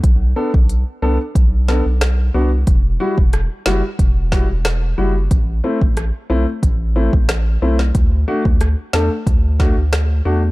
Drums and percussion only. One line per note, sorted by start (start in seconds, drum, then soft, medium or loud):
0.04 kick loud
0.04 closed hi-hat medium
0.54 kick medium
0.69 closed hi-hat medium
1.35 kick medium
1.35 closed hi-hat medium
1.68 snare medium
2.01 cross-stick loud
2.01 snare loud
2.01 closed hi-hat medium
2.67 kick loud
2.67 closed hi-hat medium
3.18 kick medium
3.33 cross-stick medium
3.33 closed hi-hat medium
3.66 snare loud
3.99 kick medium
3.99 closed hi-hat medium
4.32 kick medium
4.32 snare medium
4.65 cross-stick loud
4.65 snare loud
4.65 closed hi-hat medium
5.31 kick loud
5.31 closed hi-hat medium
5.81 kick medium
5.97 cross-stick medium
5.97 closed hi-hat medium
6.63 kick medium
6.63 closed hi-hat medium
7.13 kick loud
7.29 cross-stick medium
7.29 snare loud
7.29 closed hi-hat medium
7.79 snare medium
7.95 kick loud
7.95 closed hi-hat medium
8.45 kick medium
8.61 cross-stick medium
8.61 closed hi-hat medium
8.93 snare loud
9.27 kick medium
9.27 closed hi-hat medium
9.60 kick medium
9.60 snare medium
9.93 cross-stick loud
9.93 snare loud
9.93 closed hi-hat medium